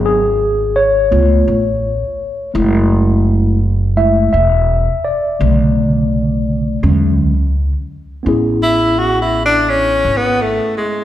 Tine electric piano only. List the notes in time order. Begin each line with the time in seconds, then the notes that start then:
Already playing: F#3 B3 D4
0.06 G#4
0.76 C#5
1.11 A3 B3 F4
2.54 G#3 A3 E4
3.96 G#3 A3 E4 E5
4.33 E5
5.05 D5
5.39 C#3 D3 A3
6.82 D3 F#3 G#3 C#4
8.23 B3 C#4 E4
8.29 G#4